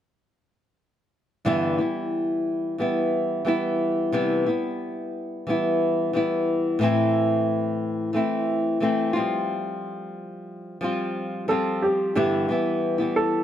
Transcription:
1.45 1.79 G2 medium
1.45 1.79 D3 medium
1.45 1.79 E3 medium
1.45 1.80 G3 medium
1.45 1.78 B3 medium
1.45 1.77 E4 medium
1.78 2.78 E3 soft
1.78 2.79 G3 soft
1.78 2.80 B3 soft
1.78 2.81 E4 soft
2.78 3.44 E3 soft
2.78 3.46 G3 soft
2.78 3.47 B3 medium
2.78 3.48 E4 medium
3.45 4.13 E3 medium
3.45 4.13 G3 medium
3.45 4.14 B3 medium
3.45 4.14 E4 medium
4.12 4.46 C3 medium
4.12 4.47 E3 medium
4.12 4.47 G3 medium
4.12 4.47 B3 medium
4.12 4.45 E4 medium
4.46 5.47 G3 soft
4.46 5.48 B3 soft
4.46 5.50 E4 soft
5.47 6.13 E3 medium
5.47 6.14 G3 soft
5.47 6.15 B3 medium
5.47 6.16 E4 medium
6.13 6.80 E3 medium
6.13 6.81 G3 medium
6.13 6.82 B3 soft
6.13 6.84 E4 medium
6.79 8.14 A2 medium
6.79 8.12 E3 medium
6.79 8.13 A3 medium
6.83 8.15 C4 medium
6.83 8.15 E4 medium
8.13 8.79 E3 medium
8.13 8.81 A3 soft
8.13 8.82 C4 medium
8.13 8.83 E4 medium
8.80 9.14 E3 soft
8.80 9.15 A3 medium
8.80 9.14 C4 medium
8.80 9.13 E4 medium
9.13 10.82 G3 soft
9.13 10.82 C4 medium
9.13 10.81 F4 medium
9.19 10.80 F3 soft
10.81 11.47 F3 medium
10.81 11.49 G3 medium
10.81 11.49 C4 medium
10.81 11.50 F4 medium
11.48 12.15 F3 medium
11.48 12.16 G3 medium
11.48 12.17 C4 medium
11.48 12.17 F4 medium
11.48 11.83 A4 medium
11.82 12.14 G4 medium
12.15 12.49 G2 medium
12.15 12.49 D3 medium
12.15 12.47 E3 medium
12.15 12.48 G3 medium
12.15 12.49 B3 medium
12.15 12.50 E4 medium
12.15 13.19 G4 medium
12.48 12.99 E3 medium
12.48 13.00 G3 soft
12.48 12.98 B3 medium
12.48 12.97 E4 medium
12.98 13.44 E3 soft
12.98 13.44 G3 soft
12.98 13.44 B3 soft
12.98 13.44 E4 soft
13.16 13.44 A4 medium

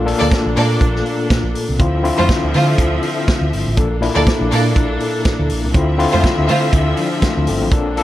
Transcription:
0.00 0.12 A#1 medium
0.00 1.82 A3 medium
0.00 1.78 A#3 medium
0.00 1.78 D4 medium
0.00 1.80 F4 medium
0.00 1.78 A4 medium
0.05 0.71 A#2 medium
0.05 0.71 A#3 medium
0.05 0.72 D4 medium
0.05 0.72 A4 medium
0.05 open hi-hat medium
0.20 0.30 D2 medium
0.20 0.30 A#3 medium
0.20 0.30 A4 medium
0.20 0.30 D5 loud
0.31 kick loud
0.31 snare loud
0.31 closed hi-hat medium
0.46 0.54 A#1 medium
0.56 0.76 A#2 medium
0.56 0.78 A#3 medium
0.56 0.77 A4 medium
0.56 0.77 D5 loud
0.56 open hi-hat medium
0.81 1.00 A#1 medium
0.81 kick loud
0.81 closed hi-hat medium
0.95 snare soft
1.06 open hi-hat soft
1.30 1.41 A#2 medium
1.30 kick loud
1.30 snare loud
1.30 closed hi-hat medium
1.43 1.53 A#1 loud
1.55 open hi-hat medium
1.69 1.78 C2 medium
1.78 2.10 D2 loud
1.78 1.96 D3 medium
1.78 3.75 D3 medium
1.78 3.75 F3 medium
1.78 3.75 C4 medium
1.78 1.96 C4 medium
1.78 1.96 E4 medium
1.78 1.97 F4 medium
1.78 3.75 E5 medium
1.78 kick loud
1.78 closed hi-hat medium
2.03 2.69 D3 medium
2.03 2.69 C4 medium
2.03 2.69 E4 medium
2.03 2.69 F4 medium
2.03 open hi-hat medium
2.18 2.28 F2 medium
2.18 2.28 A3 medium
2.18 2.28 F4 loud
2.18 2.28 C5 loud
2.29 kick loud
2.29 snare loud
2.29 closed hi-hat medium
2.43 2.52 D2 medium
2.54 2.74 D3 medium
2.54 2.75 A3 medium
2.54 2.75 F4 medium
2.54 2.75 C5 medium
2.54 open hi-hat medium
2.78 2.98 D2 medium
2.78 kick loud
2.78 closed hi-hat medium
3.03 open hi-hat medium
3.28 kick loud
3.28 snare loud
3.28 closed hi-hat medium
3.41 3.50 D2 medium
3.53 3.64 G1 medium
3.53 open hi-hat medium
3.67 3.75 A1 medium
3.76 4.07 A#1 loud
3.76 3.93 A#2 medium
3.76 5.72 A#3 medium
3.76 3.94 A#3 medium
3.76 5.72 D4 medium
3.76 3.94 D4 medium
3.76 5.73 A4 medium
3.76 3.94 A4 medium
3.76 kick loud
3.76 closed hi-hat medium
4.01 4.67 A#2 medium
4.01 4.67 A#3 medium
4.01 4.67 D4 medium
4.01 4.67 E4 loud
4.01 open hi-hat medium
4.15 4.25 D2 medium
4.15 4.25 A#3 loud
4.15 4.25 A4 medium
4.15 4.25 D5 loud
4.26 kick loud
4.26 snare loud
4.26 closed hi-hat medium
4.41 4.49 A#1 loud
4.52 4.71 A#2 loud
4.52 4.73 A#3 medium
4.52 4.73 A4 medium
4.52 4.72 D5 loud
4.52 open hi-hat medium
4.76 4.96 A#1 medium
4.76 kick loud
4.76 closed hi-hat medium
5.00 open hi-hat medium
5.25 kick loud
5.25 snare loud
5.25 closed hi-hat medium
5.39 5.48 D2 loud
5.49 5.64 A#1 medium
5.49 open hi-hat medium
5.64 5.73 C2 medium
5.74 6.04 D2 loud
5.74 5.91 D3 medium
5.74 7.70 D3 medium
5.74 7.70 F3 medium
5.74 5.91 C4 medium
5.74 7.70 C4 medium
5.74 5.92 E4 medium
5.74 5.92 F4 medium
5.74 7.70 E5 medium
5.74 kick loud
5.74 closed hi-hat medium
5.98 6.64 D3 medium
5.98 6.64 C4 medium
5.98 6.64 E4 medium
5.98 6.64 F4 loud
5.98 open hi-hat medium
6.12 6.22 F2 medium
6.12 6.22 A3 medium
6.12 6.22 F4 medium
6.12 6.22 C5 loud
6.24 kick loud
6.24 snare loud
6.24 closed hi-hat medium
6.38 6.47 D2 medium
6.48 6.69 D3 loud
6.48 6.69 A3 medium
6.48 6.69 F4 loud
6.48 6.69 C5 loud
6.48 open hi-hat medium
6.73 6.93 D2 medium
6.73 kick loud
6.73 closed hi-hat medium
6.97 7.22 F3 medium
6.97 7.21 D4 medium
6.97 open hi-hat soft
7.22 7.47 A3 medium
7.22 7.46 F4 medium
7.22 kick loud
7.22 snare loud
7.22 closed hi-hat medium
7.37 7.46 D2 medium
7.47 7.62 G1 loud
7.47 7.95 C4 medium
7.47 7.72 A4 medium
7.47 open hi-hat medium
7.62 7.72 A1 medium
7.71 8.01 A#1 loud
7.71 7.88 A#2 medium
7.71 8.03 A#3 medium
7.71 7.89 A#3 medium
7.71 8.03 D4 medium
7.71 7.89 D4 medium
7.71 8.03 A4 medium
7.71 7.89 A4 medium
7.71 kick loud
7.71 closed hi-hat medium
7.96 8.03 A#2 medium
7.96 8.03 A#3 medium
7.96 8.03 D4 medium
7.96 8.03 A4 loud
7.96 open hi-hat medium

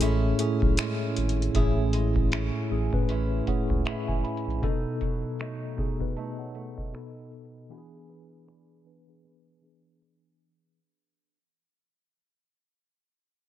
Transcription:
0.00 0.33 A1 medium
0.00 0.38 A2 loud
0.00 0.77 G#3 medium
0.00 0.39 A3 loud
0.00 0.40 C#4 loud
0.00 0.38 C#4 medium
0.00 0.78 E4 medium
0.00 0.41 G#4 loud
0.00 4.64 A4 medium
0.00 closed hi-hat medium
0.38 1.41 A2 medium
0.38 1.41 A3 medium
0.38 0.77 C#4 medium
0.38 1.41 C#4 medium
0.38 1.42 G#4 medium
0.38 closed hi-hat medium
0.62 0.76 B1 medium
0.62 kick medium
0.77 1.92 G#3 medium
0.77 2.31 C#4 medium
0.77 1.54 E4 medium
0.77 finger snap loud
0.77 closed hi-hat medium
1.17 1.49 G#1 medium
1.17 closed hi-hat soft
1.29 closed hi-hat soft
1.42 closed hi-hat soft
1.53 2.50 A1 loud
1.53 2.56 A2 loud
1.53 4.63 A2 medium
1.53 2.56 A3 loud
1.53 2.57 C#4 loud
1.53 2.32 E4 medium
1.53 2.57 G#4 loud
1.53 kick loud
1.53 closed hi-hat medium
1.93 2.31 G#3 medium
1.93 closed hi-hat medium
2.16 kick medium
2.32 3.08 G#3 medium
2.32 3.08 C#4 medium
2.32 3.09 E4 medium
2.32 finger snap loud
2.32 closed hi-hat medium
2.69 2.89 A1 medium
2.69 2.89 A2 medium
2.69 2.89 A3 medium
2.69 2.90 C#4 medium
2.69 2.90 G#4 medium
2.92 3.40 A2 medium
2.92 3.06 A2 medium
2.92 3.40 A3 medium
2.92 3.41 C#4 medium
2.92 3.41 B4 medium
2.92 kick medium
3.09 3.41 A1 medium
3.09 3.84 G#3 medium
3.09 3.46 C#4 medium
3.09 3.86 E4 medium
3.09 closed hi-hat medium
3.46 4.48 A2 medium
3.46 4.49 A3 medium
3.46 3.85 C#4 medium
3.46 4.49 C#4 medium
3.46 4.50 G#4 medium
3.46 3.83 F#5 medium
3.46 kick medium
3.46 closed hi-hat medium
3.70 3.83 C#2 medium
3.70 kick medium
3.85 3.95 F#1 soft
3.85 4.71 G#3 medium
3.85 4.72 C#4 medium
3.85 4.63 E4 medium
3.85 4.07 E5 medium
3.85 finger snap loud
3.85 closed hi-hat medium
4.08 4.22 F#1 medium
4.08 4.23 G#5 medium
4.08 kick medium
4.24 4.60 B5 medium
4.24 closed hi-hat soft
4.37 closed hi-hat soft
4.47 4.60 A#1 medium
4.47 closed hi-hat soft
4.62 5.64 B2 loud
4.62 6.92 B2 medium
4.62 5.64 B3 loud
4.62 4.70 D4 medium
4.62 5.40 D#4 medium
4.62 5.65 A4 loud
4.62 kick loud
4.62 closed hi-hat medium
4.69 5.68 D#4 loud
5.01 5.39 F#3 medium
5.01 kick medium
5.01 closed hi-hat medium
5.40 6.15 F#3 medium
5.40 6.16 A3 medium
5.40 6.17 D#4 medium
5.40 finger snap medium
5.40 closed hi-hat medium
5.77 5.96 B2 medium
5.77 5.97 B3 medium
5.77 5.97 D#4 medium
5.77 5.98 G#4 medium
5.77 kick medium
5.99 6.47 B2 medium
5.99 6.48 B3 medium
5.99 6.48 D#4 medium
5.99 6.17 B4 medium
5.99 kick medium
6.17 7.02 F#3 medium
6.17 6.54 A3 medium
6.17 7.03 D#4 medium
6.17 6.38 D#5 medium
6.17 6.38 A5 medium
6.17 closed hi-hat medium
6.39 6.76 C#5 medium
6.39 6.75 F#5 medium
6.55 7.02 A3 medium
6.55 closed hi-hat medium
6.77 6.93 A4 medium
6.77 7.14 D#5 medium
6.77 kick medium
6.92 7.61 B2 medium
6.92 7.79 B2 medium
6.92 7.61 B3 medium
6.92 7.61 D#4 medium
6.92 7.62 A4 medium
6.92 finger snap loud
6.92 closed hi-hat medium
7.32 closed hi-hat soft
7.45 closed hi-hat soft
7.58 closed hi-hat soft
7.69 8.71 E3 loud
7.69 11.20 E3 medium
7.69 8.72 B3 loud
7.69 8.72 D4 loud
7.69 7.78 F#4 medium
7.69 8.48 G#4 medium
7.78 8.76 G#4 loud
8.09 8.47 B3 medium
8.47 9.24 B3 medium
8.47 9.24 D4 medium
8.47 9.25 G#4 medium
8.47 finger snap medium
8.84 9.04 E3 medium
8.84 9.05 B3 medium
8.84 9.05 D4 medium
8.84 9.05 B4 medium
9.07 9.55 E3 medium
9.07 9.56 B3 medium
9.07 9.56 D4 medium
9.07 9.56 G#4 medium
9.24 10.01 B3 medium
9.24 9.62 D4 medium
9.24 10.02 G#4 medium
9.61 10.64 E3 medium
9.61 10.64 B3 medium
9.61 10.01 D4 medium
9.61 10.65 D4 medium
9.61 10.65 G#4 medium
10.01 11.37 B3 medium
10.01 11.37 D4 medium
10.01 11.37 G#4 medium
10.01 finger snap loud

